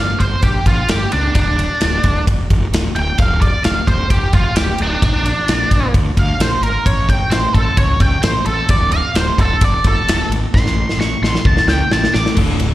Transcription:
0.00 0.13 G1 medium
0.00 0.20 F5 medium
0.20 0.35 G1 medium
0.20 0.42 C5 medium
0.20 kick medium
0.20 ride medium
0.42 0.58 A#1 medium
0.42 0.65 G4 medium
0.42 kick loud
0.42 ride medium
0.66 0.81 A#1 medium
0.66 0.89 F4 medium
0.66 kick medium
0.66 ride medium
0.88 1.04 G1 medium
0.88 1.12 G4 medium
0.88 snare loud
0.88 ride medium
1.12 1.28 C#2 medium
1.12 1.34 D4 medium
1.12 ride medium
1.35 1.66 D1 medium
1.35 2.24 D4 loud
1.35 kick medium
1.35 ride medium
1.59 ride medium
1.81 1.97 D1 medium
1.81 snare loud
1.81 ride medium
2.03 2.19 D1 loud
2.03 kick medium
2.03 ride medium
2.27 2.42 F1 medium
2.27 kick medium
2.27 ride medium
2.50 2.65 F1 medium
2.50 kick medium
2.50 ride medium
2.72 2.87 D1 medium
2.72 snare loud
2.72 ride loud
2.95 3.10 D1 medium
2.95 3.18 G5 loud
2.95 ride medium
3.18 3.49 D1 loud
3.18 3.41 F5 loud
3.18 kick loud
3.18 ride medium
3.41 3.64 D5 medium
3.41 kick medium
3.41 ride medium
3.64 3.79 D1 medium
3.64 3.87 F5 medium
3.64 snare loud
3.64 ride medium
3.87 4.03 D1 medium
3.87 4.10 C5 medium
3.87 kick medium
3.87 ride medium
4.10 4.26 F1 medium
4.10 4.33 G4 medium
4.10 kick loud
4.10 ride medium
4.33 4.48 F1 medium
4.33 4.56 F4 medium
4.33 kick medium
4.33 ride medium
4.56 4.72 D1 medium
4.56 4.79 G4 medium
4.56 snare loud
4.56 ride loud
4.78 4.95 D1 medium
4.78 5.03 D4 medium
4.78 ride medium
5.02 5.33 A#1 loud
5.02 5.92 D4 medium
5.02 kick loud
5.02 ride medium
5.25 ride medium
5.48 5.64 A#1 medium
5.48 snare loud
5.48 ride medium
5.71 5.86 A#1 medium
5.71 kick medium
5.71 ride medium
5.94 6.09 D2 medium
5.94 kick loud
5.94 ride medium
6.17 6.32 D2 medium
6.17 6.40 F5 loud
6.17 kick medium
6.17 ride medium
6.38 6.54 A#1 medium
6.38 6.62 C5 loud
6.38 snare loud
6.38 ride loud
6.61 6.77 G#1 medium
6.61 6.85 A#4 medium
6.61 ride medium
6.86 7.16 A1 medium
6.86 7.08 C#5 medium
6.86 kick loud
6.86 ride medium
7.09 7.31 G5 loud
7.09 kick medium
7.09 ride medium
7.30 7.46 A1 medium
7.30 7.53 C5 medium
7.30 snare loud
7.30 ride medium
7.54 7.70 A1 medium
7.54 7.77 A4 medium
7.54 kick medium
7.54 ride medium
7.77 7.93 C#2 loud
7.77 8.00 C#5 medium
7.77 kick loud
7.77 ride medium
8.00 8.15 C#2 medium
8.00 8.23 G5 medium
8.00 kick medium
8.00 ride medium
8.22 8.38 A1 medium
8.22 8.45 C5 medium
8.22 snare loud
8.22 ride medium
8.46 8.62 A1 medium
8.46 8.68 A4 loud
8.46 ride medium
8.69 8.99 D1 loud
8.69 8.92 D5 loud
8.69 kick loud
8.69 ride medium
8.92 9.14 F5 loud
8.92 ride medium
9.14 9.30 D1 medium
9.14 9.38 C5 medium
9.14 snare loud
9.14 ride medium
9.38 9.53 D1 loud
9.38 9.62 A4 loud
9.38 kick medium
9.38 ride medium
9.61 9.76 F1 medium
9.61 9.85 D5 medium
9.61 kick loud
9.61 ride loud
9.84 10.00 F1 loud
9.84 10.30 A4 loud
9.84 kick medium
9.84 ride medium
10.07 10.22 D1 medium
10.07 snare loud
10.07 ride loud
10.29 10.44 G#1 medium
10.29 ride medium
10.53 10.83 A1 loud
10.53 10.98 C6 loud
10.53 kick loud
10.53 snare medium
10.66 snare medium
10.89 snare medium
10.97 11.13 A1 loud
10.97 11.21 C#6 medium
10.97 snare medium
11.22 11.37 A1 medium
11.22 11.44 C6 loud
11.22 snare medium
11.35 snare medium
11.45 11.60 C#2 medium
11.45 11.68 A5 medium
11.45 kick loud
11.57 snare medium
11.66 11.82 C#2 medium
11.66 11.90 G5 medium
11.66 snare medium
11.90 12.05 A1 medium
11.90 12.14 A5 medium
11.90 snare loud
12.04 snare medium
12.14 12.29 A1 loud
12.14 12.35 D6 loud
12.14 snare medium
12.26 snare medium
12.35 12.58 D1 medium
12.35 12.57 D2 medium
12.35 12.58 A2 loud
12.35 12.58 D3 loud
12.35 kick medium
12.35 crash loud
12.59 12.74 D1 medium
12.59 12.74 D2 medium
12.59 12.74 A2 medium
12.59 ride medium

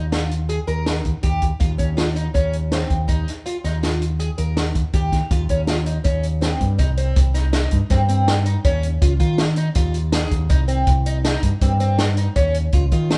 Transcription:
0.00 0.58 D#2 medium
0.12 0.33 F4 medium
0.12 snare medium
0.12 closed hi-hat medium
0.31 closed hi-hat medium
0.49 0.59 G#4 medium
0.49 closed hi-hat medium
0.67 1.00 D#2 medium
0.67 0.88 A#4 medium
0.67 closed hi-hat soft
0.86 snare medium
0.86 closed hi-hat medium
1.05 1.13 D#2 medium
1.05 kick medium
1.05 closed hi-hat soft
1.23 1.40 D#2 medium
1.23 1.43 G4 medium
1.23 kick medium
1.23 closed hi-hat medium
1.42 1.50 D#2 medium
1.42 kick medium
1.42 closed hi-hat medium
1.60 1.77 D#2 medium
1.60 1.70 F4 medium
1.60 kick medium
1.60 closed hi-hat medium
1.78 2.28 D#2 medium
1.78 1.89 C#4 medium
1.78 kick medium
1.78 closed hi-hat medium
1.97 2.07 F4 medium
1.97 snare medium
1.97 closed hi-hat medium
2.16 2.26 D#4 medium
2.16 closed hi-hat medium
2.34 2.83 D#2 medium
2.34 2.55 C#4 medium
2.34 kick medium
2.34 closed hi-hat medium
2.53 closed hi-hat medium
2.72 2.92 C4 medium
2.72 snare medium
2.72 closed hi-hat medium
2.90 3.07 D#2 medium
2.90 kick medium
2.90 closed hi-hat soft
3.08 3.25 D#2 medium
3.08 3.28 D#4 medium
3.08 kick medium
3.08 closed hi-hat medium
3.28 snare soft
3.28 closed hi-hat medium
3.46 3.56 F4 medium
3.46 closed hi-hat medium
3.64 4.29 D#2 medium
3.64 3.75 D#4 medium
3.64 snare soft
3.64 closed hi-hat medium
3.83 4.03 F4 medium
3.83 snare medium
3.83 closed hi-hat medium
4.02 closed hi-hat medium
4.19 4.30 G#4 medium
4.19 closed hi-hat medium
4.38 4.71 D#2 medium
4.38 4.58 A#4 medium
4.38 closed hi-hat medium
4.57 snare medium
4.57 closed hi-hat medium
4.75 4.83 D#2 medium
4.75 kick medium
4.75 closed hi-hat medium
4.93 5.10 D#2 medium
4.93 5.14 G4 medium
4.93 kick medium
4.93 closed hi-hat medium
5.12 5.21 D#2 medium
5.12 kick medium
5.12 snare soft
5.12 closed hi-hat medium
5.31 5.47 D#2 medium
5.31 5.41 F4 medium
5.31 kick medium
5.31 closed hi-hat medium
5.49 5.98 D#2 medium
5.49 5.60 C#4 medium
5.49 kick medium
5.49 closed hi-hat medium
5.67 5.78 F4 medium
5.67 snare medium
5.67 closed hi-hat medium
5.86 5.96 D#4 medium
5.86 closed hi-hat medium
6.04 6.54 D#2 medium
6.04 6.25 C#4 medium
6.04 kick medium
6.04 closed hi-hat medium
6.23 closed hi-hat soft
6.41 6.62 C4 medium
6.41 snare medium
6.41 closed hi-hat medium
6.61 6.77 G2 medium
6.61 kick medium
6.61 closed hi-hat soft
6.78 7.12 C2 loud
6.78 6.89 D#4 medium
6.78 kick loud
6.78 closed hi-hat medium
6.97 7.18 C4 medium
6.97 closed hi-hat medium
7.16 7.65 C2 medium
7.16 kick loud
7.16 closed hi-hat medium
7.34 7.45 D#4 medium
7.34 snare soft
7.34 closed hi-hat medium
7.53 7.73 D#4 medium
7.53 snare loud
7.53 closed hi-hat medium
7.71 7.80 G2 medium
7.71 kick medium
7.71 closed hi-hat medium
7.90 8.55 G2 medium
7.90 8.01 C4 medium
7.90 kick medium
7.90 snare soft
7.90 closed hi-hat medium
8.09 8.29 C4 medium
8.09 closed hi-hat medium
8.28 snare loud
8.28 closed hi-hat medium
8.46 8.56 D#4 medium
8.46 closed hi-hat medium
8.64 8.97 D#2 loud
8.64 8.85 C#4 medium
8.64 kick loud
8.64 closed hi-hat medium
8.83 closed hi-hat medium
9.02 9.18 C#2 medium
9.02 9.12 F4 medium
9.02 kick loud
9.02 closed hi-hat medium
9.20 9.69 D#3 medium
9.20 9.40 F4 medium
9.20 kick medium
9.20 closed hi-hat medium
9.38 snare loud
9.38 closed hi-hat medium
9.56 9.67 D#4 medium
9.56 closed hi-hat medium
9.75 10.24 D#2 medium
9.75 9.96 F4 medium
9.75 kick loud
9.75 closed hi-hat medium
9.94 closed hi-hat medium
10.12 10.33 G#4 medium
10.12 snare loud
10.12 closed hi-hat medium
10.31 10.48 D#2 loud
10.31 kick medium
10.31 closed hi-hat medium
10.50 10.83 C2 loud
10.50 10.60 D#4 medium
10.50 kick loud
10.50 closed hi-hat medium
10.68 10.89 C4 medium
10.68 closed hi-hat medium
10.87 11.36 C2 medium
10.87 kick loud
10.87 closed hi-hat medium
11.06 11.16 D#4 medium
11.06 closed hi-hat medium
11.25 11.45 D#4 medium
11.25 snare loud
11.25 closed hi-hat medium
11.43 11.51 G2 medium
11.43 kick medium
11.43 closed hi-hat medium
11.61 12.26 G2 medium
11.61 11.72 C4 medium
11.61 kick loud
11.61 closed hi-hat medium
11.80 12.00 C4 medium
11.80 closed hi-hat medium
11.98 snare loud
11.98 closed hi-hat medium
12.17 12.28 D#4 medium
12.17 closed hi-hat medium
12.36 12.68 D#2 loud
12.36 12.56 C#4 medium
12.36 kick loud
12.36 closed hi-hat medium
12.54 closed hi-hat medium
12.72 12.89 C#2 medium
12.72 12.84 F4 medium
12.72 kick loud
12.72 closed hi-hat medium
12.92 13.18 D#3 medium
12.92 13.12 F4 medium
12.92 kick medium
12.92 closed hi-hat medium
13.10 snare loud
13.10 closed hi-hat medium

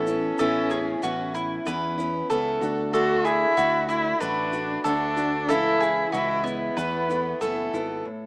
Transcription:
0.00 0.31 A1 medium
0.00 0.38 A4 medium
0.07 0.38 B3 soft
0.07 1.30 C#4 medium
0.07 0.39 C#4 soft
0.07 0.39 E4 medium
0.07 shaker medium
0.39 0.94 A1 medium
0.39 1.03 A2 medium
0.39 1.01 E3 medium
0.39 1.01 B3 medium
0.39 1.02 C#4 medium
0.39 1.03 E4 medium
0.39 0.70 A4 medium
0.39 shaker medium
0.70 1.02 G#4 medium
0.70 shaker medium
1.02 1.58 A1 medium
1.02 1.64 E3 medium
1.02 1.65 B3 medium
1.02 1.66 C#4 medium
1.02 1.67 E4 medium
1.02 1.34 F#4 medium
1.02 shaker medium
1.35 1.66 E4 medium
1.35 shaker medium
1.65 2.22 E2 loud
1.65 1.98 E3 medium
1.65 1.98 B3 medium
1.65 1.98 C#4 medium
1.65 1.96 E4 medium
1.65 2.29 B4 medium
1.65 shaker medium
1.98 2.29 B3 soft
1.98 2.30 C#4 medium
1.98 2.30 E4 medium
1.98 shaker medium
2.30 2.58 C#2 medium
2.30 2.62 E3 medium
2.30 2.62 B3 medium
2.30 2.62 C#4 medium
2.30 2.61 E4 medium
2.30 2.92 A4 medium
2.30 shaker medium
2.61 3.44 D2 medium
2.61 2.93 A3 soft
2.61 2.93 D4 medium
2.61 2.93 F#4 medium
2.61 shaker medium
2.93 3.55 D3 medium
2.93 3.56 A3 medium
2.93 3.57 D4 medium
2.93 3.26 F#4 medium
2.93 3.57 F#4 medium
2.93 3.25 A4 medium
2.93 shaker medium
3.25 3.89 E4 loud
3.25 3.56 G#4 medium
3.25 shaker medium
3.57 4.13 D2 medium
3.57 4.20 D3 medium
3.57 4.21 A3 medium
3.57 4.21 D4 medium
3.57 3.88 F#4 medium
3.57 4.22 F#4 medium
3.57 shaker medium
3.89 4.20 E4 medium
3.89 4.22 E4 medium
3.89 shaker medium
4.20 4.76 A1 loud
4.20 4.53 D3 medium
4.20 4.53 A3 medium
4.20 4.85 D4 medium
4.20 4.53 D4 medium
4.20 4.52 F#4 medium
4.20 4.83 B4 medium
4.20 shaker medium
4.53 4.84 A3 soft
4.53 4.85 D4 soft
4.53 4.85 F#4 soft
4.53 shaker medium
4.84 5.49 D2 medium
4.84 5.17 D3 medium
4.84 5.17 A3 medium
4.84 5.51 D4 loud
4.84 5.16 D4 medium
4.84 5.15 F#4 medium
4.84 5.47 A4 medium
4.84 shaker medium
5.16 5.50 A3 soft
5.16 5.49 D4 soft
5.16 5.49 F#4 medium
5.16 shaker medium
5.49 6.04 C#2 loud
5.49 6.13 C#3 medium
5.49 6.12 E3 medium
5.49 6.14 C#4 medium
5.49 6.13 E4 loud
5.49 6.14 E4 medium
5.49 5.80 A4 medium
5.49 shaker loud
5.80 6.12 G#4 medium
5.80 shaker medium
6.12 6.68 C#2 medium
6.12 6.75 E3 medium
6.12 6.77 G#3 medium
6.12 6.78 C#4 medium
6.12 6.46 E4 medium
6.12 6.78 E4 medium
6.12 6.43 F#4 medium
6.12 shaker medium
6.44 7.73 B3 medium
6.44 6.76 E4 medium
6.44 shaker medium
6.77 7.33 E2 loud
6.77 7.09 E3 medium
6.77 7.09 A3 medium
6.77 7.09 B3 medium
6.77 7.08 E4 medium
6.77 7.40 B4 medium
6.77 shaker medium
7.09 7.40 E3 soft
7.09 7.41 A3 soft
7.09 7.41 B3 soft
7.09 7.41 E4 soft
7.09 shaker medium
7.41 7.70 F#1 medium
7.41 7.73 E3 medium
7.41 7.74 A3 medium
7.41 7.73 B3 medium
7.41 7.72 E4 medium
7.41 8.04 A4 medium
7.41 shaker medium
7.73 8.02 G#1 medium
7.73 8.07 E3 soft
7.73 8.06 A3 soft
7.73 8.06 B3 soft
7.73 8.06 E4 medium
7.73 shaker medium
8.05 8.26 A2 medium

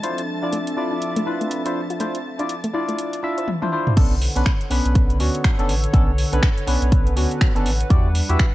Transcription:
0.00 3.44 F3 medium
0.00 3.44 C4 medium
0.00 0.21 D4 medium
0.00 3.44 D4 medium
0.00 0.21 E4 medium
0.00 0.22 F4 medium
0.00 3.44 A4 medium
0.00 3.44 E5 medium
0.00 3.48 A5 medium
0.00 3.48 A6 medium
0.00 closed hi-hat medium
0.04 0.22 C5 medium
0.18 closed hi-hat medium
0.42 0.57 D4 medium
0.42 0.58 E4 medium
0.42 0.46 F4 medium
0.42 0.58 F4 medium
0.42 0.58 D5 medium
0.53 0.60 A3 medium
0.53 closed hi-hat medium
0.67 closed hi-hat medium
0.77 1.24 D4 medium
0.77 1.24 E4 medium
0.77 1.24 F4 medium
0.77 1.24 D5 medium
0.92 0.95 D4 medium
1.02 closed hi-hat medium
1.16 1.19 A3 loud
1.16 closed hi-hat medium
1.26 1.62 D4 medium
1.26 1.62 E4 medium
1.26 1.31 E4 medium
1.26 1.62 F4 medium
1.26 1.62 B4 medium
1.41 1.48 A3 medium
1.41 closed hi-hat soft
1.51 closed hi-hat medium
1.65 1.80 D4 medium
1.65 1.81 E4 medium
1.65 1.81 F4 medium
1.65 1.81 C5 loud
1.65 closed hi-hat soft
1.90 1.93 F4 medium
1.90 closed hi-hat soft
2.00 2.07 A3 medium
2.00 2.18 D4 medium
2.00 2.18 E4 medium
2.00 2.18 F4 medium
2.00 2.19 C5 medium
2.00 closed hi-hat medium
2.15 closed hi-hat medium
2.39 2.54 D4 medium
2.39 2.42 D4 medium
2.39 2.54 E4 medium
2.39 2.54 F4 medium
2.39 2.55 D5 medium
2.39 closed hi-hat soft
2.49 closed hi-hat medium
2.64 2.67 A3 loud
2.64 closed hi-hat medium
2.74 3.21 D4 medium
2.74 3.21 E4 medium
2.74 2.78 E4 medium
2.74 3.21 F4 medium
2.74 3.21 D5 medium
2.89 2.96 A3 medium
2.89 closed hi-hat soft
2.98 closed hi-hat medium
3.13 closed hi-hat soft
3.23 3.50 D4 medium
3.23 3.50 E4 medium
3.23 3.50 F4 medium
3.23 3.50 E5 loud
3.38 3.43 C5 medium
3.38 closed hi-hat soft
3.48 high tom medium
3.62 3.71 D4 medium
3.62 3.71 E4 medium
3.62 3.71 F4 medium
3.62 3.71 C5 medium
3.62 high tom medium
3.72 3.94 D4 loud
3.72 3.94 E4 medium
3.72 3.94 F4 medium
3.72 3.94 C5 loud
3.87 mid tom medium
3.96 4.28 B1 loud
3.96 7.87 D3 medium
3.96 4.15 B3 medium
3.96 4.15 C#4 medium
3.96 4.15 D4 medium
3.96 7.87 A4 medium
3.96 4.15 A4 medium
3.96 8.55 B4 medium
3.96 7.87 C#5 medium
3.96 8.55 F#5 medium
3.96 kick loud
3.96 closed hi-hat medium
3.96 crash loud
4.22 open hi-hat loud
4.36 4.43 B1 medium
4.36 4.51 B3 medium
4.36 4.51 C#4 medium
4.36 4.51 D4 medium
4.36 4.51 B4 medium
4.36 closed hi-hat medium
4.46 finger snap loud
4.46 kick loud
4.46 closed hi-hat medium
4.61 closed hi-hat soft
4.70 4.80 B1 medium
4.70 5.17 B3 medium
4.70 5.17 C#4 medium
4.70 5.18 D4 medium
4.70 5.18 B4 medium
4.70 open hi-hat loud
4.85 5.21 B1 loud
4.85 closed hi-hat medium
4.95 kick loud
4.95 closed hi-hat medium
5.10 closed hi-hat soft
5.19 5.29 D2 medium
5.19 5.55 B3 medium
5.19 5.56 C#4 medium
5.19 5.56 D4 medium
5.19 5.56 F#4 medium
5.19 open hi-hat loud
5.35 closed hi-hat medium
5.44 finger snap loud
5.44 kick loud
5.44 closed hi-hat medium
5.59 5.71 F#1 medium
5.59 5.74 B3 medium
5.59 5.74 C#4 medium
5.59 5.74 D4 medium
5.59 5.74 A4 loud
5.59 closed hi-hat soft
5.69 5.86 A1 loud
5.69 open hi-hat loud
5.84 closed hi-hat medium
5.93 6.24 B1 loud
5.93 6.11 B3 medium
5.93 6.12 C#4 medium
5.93 6.12 D4 medium
5.93 6.12 A4 medium
5.93 kick loud
5.93 closed hi-hat medium
6.18 open hi-hat loud
6.32 6.39 B1 medium
6.32 6.48 B3 medium
6.32 6.48 C#4 medium
6.32 6.48 D4 medium
6.32 6.48 B4 medium
6.32 closed hi-hat medium
6.43 finger snap loud
6.43 kick loud
6.43 closed hi-hat medium
6.58 closed hi-hat soft
6.67 6.77 B1 medium
6.67 7.14 B3 medium
6.67 7.14 C#4 medium
6.67 7.14 D4 medium
6.67 7.14 B4 medium
6.67 open hi-hat loud
6.82 7.18 B1 loud
6.82 closed hi-hat medium
6.92 kick loud
6.92 closed hi-hat medium
7.07 closed hi-hat soft
7.16 7.26 D2 medium
7.16 7.52 B3 medium
7.16 7.52 C#4 medium
7.16 7.52 D4 medium
7.16 7.53 F#4 medium
7.16 open hi-hat loud
7.31 closed hi-hat medium
7.41 finger snap loud
7.41 kick loud
7.41 closed hi-hat medium
7.55 7.67 F#1 medium
7.55 7.71 B3 loud
7.55 7.71 C#4 medium
7.55 7.71 D4 medium
7.55 7.71 A4 loud
7.55 closed hi-hat soft
7.66 7.83 A1 loud
7.66 open hi-hat loud
7.80 closed hi-hat medium
7.90 8.21 E2 loud
7.90 8.55 G3 medium
7.90 8.55 D4 medium
7.90 8.08 E4 medium
7.90 8.08 F#4 medium
7.90 8.09 G4 medium
7.90 8.09 D5 medium
7.90 kick loud
7.90 closed hi-hat medium
8.15 open hi-hat loud
8.29 8.36 E2 medium
8.29 8.44 E4 medium
8.29 8.45 F#4 medium
8.29 8.45 G4 medium
8.29 8.45 E5 medium
8.29 closed hi-hat medium
8.39 finger snap loud
8.39 kick loud
8.39 closed hi-hat medium

